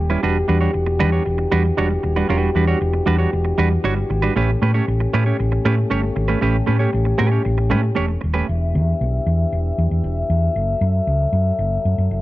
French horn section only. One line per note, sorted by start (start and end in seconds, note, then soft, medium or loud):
0.00 0.18 A3 medium
0.00 0.18 C#4 medium
0.00 4.31 G4 medium
0.23 4.32 E3 medium
0.23 4.32 D4 medium
0.23 4.31 F#4 medium
4.35 8.32 A3 medium
4.35 8.32 C#4 medium
4.35 8.32 G4 medium
8.49 10.53 E3 medium
8.49 10.53 D4 medium
8.49 10.53 G4 medium
8.49 12.22 E5 medium
10.55 12.22 F#3 medium
10.55 12.22 F#4 medium
10.55 12.22 A4 medium